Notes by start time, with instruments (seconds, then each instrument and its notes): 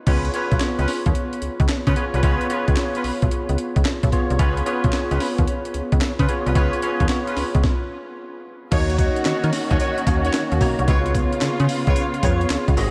0.06 fm bass C#2, tine electric piano B3 F4 G#4 C#5, horn section C#4 F4 B4, kick, closed hi-hat, crash
0.25 closed hi-hat
0.34 tine electric piano B3 F4 G#4 C#5, horn section C#4 F4 B4, closed hi-hat
0.51 fm bass B1, kick, closed hi-hat
0.60 snare, clap, closed hi-hat
0.79 fm bass C#2, horn section C#4 F4 B4, closed hi-hat
0.88 snare, open hi-hat
1.06 fm bass D#2, kick, closed hi-hat
1.15 closed hi-hat
1.33 closed hi-hat
1.42 fm bass C#2, closed hi-hat
1.60 fm bass C#2, kick, closed hi-hat
1.69 snare, clap, closed hi-hat
1.87 fm bass C#3, horn section C#4 F4 B4, kick, closed hi-hat
1.96 tine electric piano B3 F4 G#4 C#5, closed hi-hat
2.14 fm bass C2, horn section C#4 F4 B4, closed hi-hat
2.23 fm bass C#2, tine electric piano B3 F4 G#4 C#5, horn section C#4 F4 B4, kick, closed hi-hat
2.41 closed hi-hat
2.50 tine electric piano B3 F4 G#4 C#5, horn section C#4 F4 B4, closed hi-hat
2.68 fm bass C#2, kick, closed hi-hat
2.77 snare, clap, closed hi-hat
2.95 horn section C#4 F4 B4, closed hi-hat
3.04 fm bass B1, open hi-hat
3.22 fm bass B1, kick, closed hi-hat
3.31 closed hi-hat
3.49 fm bass C#2, closed hi-hat
3.58 closed hi-hat
3.76 fm bass C#2, kick, closed hi-hat
3.85 fm bass B1, snare, clap, closed hi-hat
4.03 fm bass B1, kick, closed hi-hat
4.12 tine electric piano B3 F4 G#4 C#5, kick, closed hi-hat
4.30 fm bass C2, closed hi-hat
4.39 fm bass C#2, tine electric piano B3 F4 G#4 C#5, horn section C#4 F4 B4, kick, closed hi-hat
4.57 closed hi-hat
4.66 tine electric piano B3 F4 G#4 C#5, horn section C#4 F4 B4, closed hi-hat
4.84 fm bass B1, kick, closed hi-hat
4.93 snare, clap, closed hi-hat
5.11 fm bass C#2, horn section C#4 F4 B4, closed hi-hat
5.20 snare, open hi-hat
5.38 fm bass D#2, kick, closed hi-hat
5.47 closed hi-hat
5.65 closed hi-hat
5.74 fm bass C#2, closed hi-hat
5.92 fm bass C#2, kick, closed hi-hat
6.01 snare, clap, closed hi-hat
6.19 fm bass C#3, horn section C#4 F4 B4, kick, closed hi-hat
6.28 tine electric piano B3 F4 G#4 C#5, closed hi-hat
6.46 fm bass C2, horn section C#4 F4 B4, closed hi-hat
6.55 fm bass C#2, tine electric piano B3 F4 G#4 C#5, horn section C#4 F4 B4, kick, closed hi-hat
6.73 closed hi-hat
6.82 tine electric piano B3 F4 G#4 C#5, horn section C#4 F4 B4, closed hi-hat
7.00 fm bass D#2, kick, closed hi-hat
7.09 snare, clap, closed hi-hat
7.27 horn section C#4 F4 B4, closed hi-hat
7.37 fm bass C#2, snare, open hi-hat
7.55 fm bass C#2, kick, closed hi-hat
7.64 kick, snare
8.71 fm bass D#2, string section D#3 C#4 F#4, tine electric piano A#3 D#4 F#4 C#5, horn section D#4 F#4 C#5, kick, closed hi-hat, crash
8.90 closed hi-hat
8.98 horn section D#4 F#4 C#5, kick, closed hi-hat, tambourine
9.16 closed hi-hat
9.25 fm bass D#3, horn section D#4 F#4 C#5, snare, clap, closed hi-hat, tambourine
9.44 fm bass D#3, closed hi-hat
9.53 snare, open hi-hat, tambourine
9.71 fm bass D#2, horn section D#4 F#4 C#5, kick, closed hi-hat
9.79 horn section D#4 F#4 C#5, closed hi-hat, tambourine
9.98 closed hi-hat
10.06 fm bass D#2, tine electric piano A#3 D#4 F#4 C#5, kick, closed hi-hat, tambourine
10.25 horn section D#4 F#4 C#5, closed hi-hat
10.34 snare, clap, closed hi-hat, tambourine
10.52 fm bass D#2, closed hi-hat
10.61 fm bass B1, tine electric piano A#3 D#4 F#4 C#5, kick, open hi-hat, tambourine
10.79 fm bass C2, closed hi-hat
10.88 fm bass C#2, string section C#3 B3 F4, tine electric piano B3 F4 G#4 B4, horn section F4 B4 C#5, kick, closed hi-hat
10.95 tine electric piano C#5
11.06 closed hi-hat
11.15 kick, closed hi-hat, tambourine
11.33 closed hi-hat
11.41 fm bass C#3, snare, clap, closed hi-hat, tambourine
11.60 fm bass C#3, closed hi-hat
11.69 open hi-hat, tambourine
11.87 fm bass C#2, horn section F4 B4 C#5, kick, closed hi-hat
11.96 closed hi-hat, tambourine
12.14 closed hi-hat
12.23 fm bass F2, tine electric piano B3 F4 G#4 C#5, horn section F4 B4 C#5, kick, closed hi-hat, tambourine
12.41 closed hi-hat
12.50 fm bass C#2, snare, clap, closed hi-hat, tambourine
12.68 fm bass C#2, kick, closed hi-hat
12.77 fm bass G#1, string section C3 G#3 F#4, tine electric piano C4 F#4 G#4 D#5, open hi-hat, tambourine